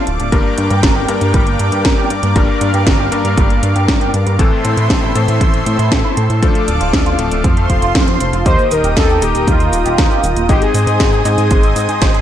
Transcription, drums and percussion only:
0.07 closed hi-hat
0.20 closed hi-hat
0.32 kick, closed hi-hat
0.58 closed hi-hat
0.70 closed hi-hat
0.83 kick, snare, closed hi-hat
1.08 closed hi-hat
1.21 closed hi-hat
1.34 kick, closed hi-hat
1.47 closed hi-hat
1.59 closed hi-hat
1.72 closed hi-hat
1.85 kick, snare, closed hi-hat
2.10 closed hi-hat
2.23 closed hi-hat
2.36 kick, closed hi-hat
2.61 closed hi-hat
2.74 closed hi-hat
2.87 kick, snare, closed hi-hat
3.12 closed hi-hat
3.25 closed hi-hat
3.37 kick, closed hi-hat
3.50 closed hi-hat
3.63 closed hi-hat
3.76 closed hi-hat
3.88 kick, snare, closed hi-hat
4.01 closed hi-hat
4.14 closed hi-hat
4.27 closed hi-hat
4.39 kick, closed hi-hat
4.65 closed hi-hat
4.77 closed hi-hat
4.90 kick, snare, closed hi-hat
5.15 closed hi-hat
5.28 closed hi-hat
5.41 kick, closed hi-hat
5.54 closed hi-hat
5.66 closed hi-hat
5.79 closed hi-hat
5.92 kick, snare, closed hi-hat
6.17 closed hi-hat
6.30 closed hi-hat
6.43 kick, closed hi-hat
6.55 closed hi-hat
6.68 closed hi-hat
6.81 closed hi-hat
6.93 kick, snare, closed hi-hat
7.06 closed hi-hat
7.19 closed hi-hat
7.31 closed hi-hat
7.44 kick, closed hi-hat
7.57 closed hi-hat
7.70 kick, closed hi-hat
7.82 closed hi-hat
7.95 kick, snare, closed hi-hat
8.08 closed hi-hat
8.20 closed hi-hat
8.33 closed hi-hat
8.46 kick, closed hi-hat, cabasa
8.59 cabasa
8.71 closed hi-hat, cabasa
8.84 closed hi-hat, cabasa
8.97 kick, snare, closed hi-hat, cabasa
9.09 cabasa
9.22 closed hi-hat, cabasa
9.35 closed hi-hat, cabasa
9.48 kick, closed hi-hat, cabasa
9.60 closed hi-hat, cabasa
9.73 closed hi-hat, cabasa
9.86 closed hi-hat, cabasa
9.98 kick, snare, closed hi-hat, cabasa
10.11 cabasa
10.24 closed hi-hat, cabasa
10.37 closed hi-hat, cabasa
10.49 kick, closed hi-hat, cabasa
10.62 closed hi-hat, cabasa
10.74 closed hi-hat, cabasa
10.87 closed hi-hat, cabasa
11.00 kick, snare, closed hi-hat, cabasa
11.13 cabasa
11.25 closed hi-hat, cabasa
11.38 closed hi-hat, cabasa
11.51 kick, closed hi-hat, cabasa
11.63 closed hi-hat, cabasa
11.76 closed hi-hat, cabasa
11.89 closed hi-hat, cabasa
12.02 kick, snare, closed hi-hat, cabasa
12.14 closed hi-hat, cabasa

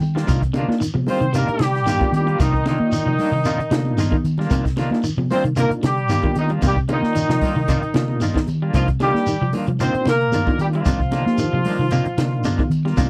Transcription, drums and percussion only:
0.01 high tom, shekere
0.15 snare, low conga
0.27 kick, closed hi-hat, low conga, shekere
0.42 kick, closed hi-hat
0.54 closed hi-hat, high conga, shekere
0.71 snare
0.81 closed hi-hat, shekere
0.95 high conga
1.07 open hi-hat, low conga, shekere
1.22 closed hi-hat
1.34 closed hi-hat, shekere
1.48 closed hi-hat
1.59 snare, closed hi-hat, high conga, shekere
1.75 snare, closed hi-hat
1.86 snare, closed hi-hat, high conga, shekere
2.01 kick, high conga
2.14 closed hi-hat, high conga, shekere
2.27 closed hi-hat, high conga
2.40 kick, closed hi-hat, low conga, shekere
2.54 kick
2.66 snare, closed hi-hat, high conga, shekere
2.92 closed hi-hat, shekere
3.18 open hi-hat, low conga, shekere
3.45 closed hi-hat, shekere
3.60 closed hi-hat
3.71 snare, closed hi-hat, high conga, shekere
3.85 high conga
3.98 snare, closed hi-hat, high conga, shekere
4.11 kick, high conga
4.25 closed hi-hat, shekere
4.38 snare, high conga
4.50 kick, closed hi-hat, low conga, shekere
4.65 kick, snare, closed hi-hat
4.77 snare, closed hi-hat, high conga, shekere
4.93 snare
5.04 closed hi-hat, shekere
5.18 high conga
5.30 open hi-hat, low conga, shekere
5.45 closed hi-hat
5.56 closed hi-hat, shekere
5.71 closed hi-hat
5.83 snare, closed hi-hat, high conga, shekere
5.97 closed hi-hat
6.09 snare, closed hi-hat, high conga, shekere
6.23 kick, high conga
6.35 closed hi-hat, high conga, shekere
6.49 closed hi-hat, high conga
6.62 kick, closed hi-hat, low conga, shekere
6.76 kick
6.89 closed hi-hat, high conga, shekere
7.04 snare
7.15 closed hi-hat, shekere
7.30 snare
7.41 kick, open hi-hat, low conga, shekere
7.56 low conga
7.68 kick, closed hi-hat, shekere
7.83 closed hi-hat
7.94 snare, closed hi-hat, high conga, shekere
8.08 high conga
8.20 snare, closed hi-hat, high conga, shekere
8.35 kick, snare, high conga
8.47 closed hi-hat, high conga, shekere
8.73 kick, closed hi-hat, low conga, shekere
8.88 kick, closed hi-hat
9.00 snare, closed hi-hat, high conga, shekere
9.15 snare
9.27 closed hi-hat, shekere
9.53 open hi-hat, low conga, shekere
9.67 closed hi-hat, low conga
9.80 closed hi-hat, shekere
9.94 closed hi-hat
10.05 snare, closed hi-hat, high conga, shekere
10.21 closed hi-hat
10.32 closed hi-hat, high conga, shekere
10.47 kick, high conga
10.59 closed hi-hat, shekere
10.73 closed hi-hat
10.85 kick, closed hi-hat, low conga, shekere
11.00 kick
11.12 snare, closed hi-hat, high conga, shekere
11.27 snare
11.38 closed hi-hat, shekere
11.64 open hi-hat, low conga, shekere
11.91 closed hi-hat, shekere
12.05 closed hi-hat
12.18 snare, closed hi-hat, high conga, shekere
12.44 closed hi-hat, high conga, shekere
12.59 kick, high conga
12.71 closed hi-hat, shekere
12.86 snare, high conga
12.97 kick, closed hi-hat, low conga, shekere

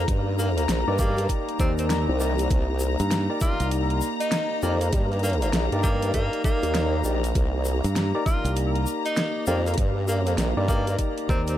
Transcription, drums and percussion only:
0.08 kick, closed hi-hat, shaker
0.39 cross-stick, shaker
0.58 closed hi-hat, shaker
0.69 snare, closed hi-hat, shaker
0.99 kick, shaker
1.17 closed hi-hat, shaker
1.29 kick, closed hi-hat, shaker
1.49 closed hi-hat
1.60 kick, shaker
1.78 closed hi-hat, shaker
1.90 snare, closed hi-hat, shaker
2.20 shaker
2.39 closed hi-hat, shaker
2.50 kick, closed hi-hat, shaker
2.79 cross-stick, shaker
2.99 closed hi-hat, shaker
3.11 snare, closed hi-hat, shaker
3.41 kick, shaker
3.60 closed hi-hat, shaker
3.71 closed hi-hat, shaker
3.90 closed hi-hat
4.01 shaker
4.20 closed hi-hat, shaker
4.32 snare, closed hi-hat, shaker
4.62 shaker
4.81 cross-stick, closed hi-hat, shaker
4.93 kick, closed hi-hat, shaker
5.12 closed hi-hat
5.19 cross-stick, closed hi-hat
5.23 closed hi-hat, shaker
5.30 closed hi-hat
5.33 closed hi-hat
5.42 closed hi-hat, shaker
5.53 snare, closed hi-hat, shaker
5.72 closed hi-hat
5.84 kick, shaker
6.02 closed hi-hat, shaker
6.14 kick, closed hi-hat, shaker
6.33 closed hi-hat
6.44 kick, shaker
6.63 closed hi-hat, shaker
6.75 snare, closed hi-hat, shaker
7.04 shaker
7.24 closed hi-hat, shaker
7.35 kick, closed hi-hat, shaker
7.65 cross-stick, shaker
7.84 closed hi-hat, shaker
7.95 snare, closed hi-hat, shaker
8.26 kick, shaker
8.45 closed hi-hat, shaker
8.56 closed hi-hat, shaker
8.75 closed hi-hat
8.86 shaker
9.05 closed hi-hat, shaker
9.16 snare, closed hi-hat, shaker
9.46 shaker
9.66 cross-stick, closed hi-hat, shaker
9.74 kick, closed hi-hat
9.78 closed hi-hat, shaker
10.08 cross-stick, shaker
10.26 closed hi-hat, shaker
10.38 snare, closed hi-hat, shaker
10.68 kick, shaker
10.87 closed hi-hat, shaker
10.99 kick, closed hi-hat, shaker
11.18 closed hi-hat
11.29 kick, shaker
11.48 closed hi-hat, shaker

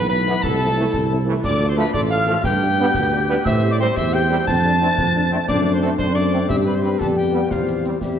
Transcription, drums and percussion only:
0.10 snare
0.27 snare
0.43 concert bass drum, snare
0.94 concert bass drum, snare
1.44 concert bass drum, snare, crash
1.60 snare
1.77 snare
1.94 concert bass drum, snare
2.11 snare
2.27 snare
2.44 concert bass drum, snare
2.78 snare
2.94 concert bass drum, snare
3.46 concert bass drum, snare
3.63 snare
3.80 snare
3.97 concert bass drum, snare
4.14 snare
4.31 snare
4.48 concert bass drum, snare
4.82 snare
4.98 concert bass drum, snare
5.49 concert bass drum, snare, crash
5.66 snare
5.82 snare
5.99 concert bass drum, snare
6.16 snare
6.33 snare
6.50 concert bass drum, snare
6.83 snare
7.01 concert bass drum, snare
7.51 concert bass drum, snare
7.67 snare
7.84 snare
8.01 concert bass drum, snare

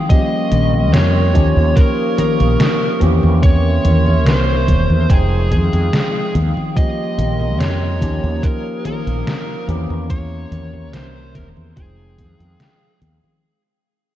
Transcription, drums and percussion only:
0.10 kick, closed hi-hat, high conga
0.52 closed hi-hat, high conga
0.74 high conga
0.94 snare, closed hi-hat, high conga
1.35 kick, closed hi-hat, high conga
1.57 high conga
1.77 kick, closed hi-hat, high conga
2.18 closed hi-hat, high conga
2.40 closed hi-hat, high conga
2.60 snare, closed hi-hat, high conga
3.01 closed hi-hat, high conga
3.23 high conga
3.43 kick, closed hi-hat, high conga
3.85 closed hi-hat, high conga
4.07 high conga
4.27 snare, closed hi-hat, high conga
4.68 kick, closed hi-hat, high conga
4.90 high conga
5.10 kick, closed hi-hat
5.52 kick, closed hi-hat, high conga
5.73 closed hi-hat, high conga
5.93 snare, closed hi-hat, high conga
6.35 closed hi-hat, high conga
6.57 high conga
6.77 kick, closed hi-hat, high conga
7.19 closed hi-hat, high conga
7.41 high conga
7.61 snare, closed hi-hat, high conga
8.02 kick, closed hi-hat, high conga
8.24 high conga
8.43 kick, closed hi-hat, high conga
8.85 closed hi-hat, high conga
9.07 closed hi-hat, high conga
9.27 snare, closed hi-hat, high conga
9.69 closed hi-hat, high conga
9.91 high conga
10.10 kick, closed hi-hat, high conga
10.52 closed hi-hat, high conga
10.74 high conga
10.93 snare, closed hi-hat, high conga
11.35 kick, snare, closed hi-hat, high conga
11.57 high conga
11.77 kick, closed hi-hat, high conga
12.18 kick, closed hi-hat, high conga
12.40 closed hi-hat, high conga
12.60 snare, closed hi-hat, high conga
13.02 closed hi-hat, high conga
13.24 high conga

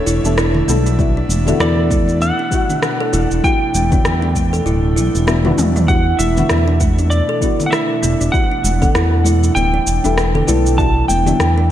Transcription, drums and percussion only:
0.07 shaker
0.25 high bongo, shaker
0.38 cross-stick, shaker
0.55 low conga
0.68 high conga, shaker
0.86 shaker
0.99 kick, shaker
1.29 high conga, shaker
1.47 low conga, shaker
1.60 cross-stick, shaker
1.91 kick, high conga, shaker
2.08 high bongo, shaker
2.22 shaker
2.52 kick, shaker
2.70 high bongo, low conga, shaker
2.83 cross-stick, shaker
3.13 shaker
3.31 shaker
3.44 kick, shaker
3.75 high conga, shaker
3.92 kick, low conga, shaker
4.05 cross-stick, shaker
4.23 high bongo
4.36 kick, high conga, shaker
4.54 high bongo, shaker
4.67 shaker
4.97 shaker
5.15 high bongo, shaker
5.28 cross-stick, shaker
5.45 high tom, low conga
5.58 mid tom, high conga, shaker
5.76 mid tom, shaker
5.89 kick, shaker
6.20 high conga, shaker
6.37 low conga, shaker
6.49 cross-stick, shaker
6.80 kick, high conga, shaker
6.98 high bongo, shaker
7.11 shaker
7.42 kick, shaker
7.60 high bongo, low conga, shaker
7.73 cross-stick, shaker
8.03 shaker
8.21 shaker
8.34 kick, shaker
8.64 high conga, shaker
8.82 kick, low conga, shaker
8.95 cross-stick, shaker
9.25 high conga, shaker
9.43 high bongo, shaker
9.56 shaker
9.87 shaker
10.05 high bongo, shaker
10.18 cross-stick, shaker
10.35 low conga
10.47 high conga, shaker
10.66 shaker
10.78 kick, shaker
11.08 high conga, shaker
11.26 low conga, shaker
11.40 cross-stick, shaker

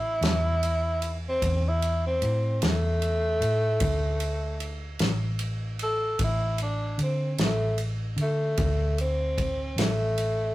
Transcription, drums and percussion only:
0.22 snare, ride
0.63 ride
1.02 ride
1.42 kick, ride
1.82 ride
2.22 ride
2.62 snare, ride
3.02 ride
3.42 ride
3.80 kick, ride
4.20 ride
4.60 ride
4.99 snare, ride
5.39 ride
5.79 ride
6.19 kick, ride
6.58 ride
6.99 ride
7.38 snare, ride
7.78 ride
8.18 ride
8.57 kick, ride
8.98 ride
9.38 kick, ride
9.78 snare, ride
10.18 ride

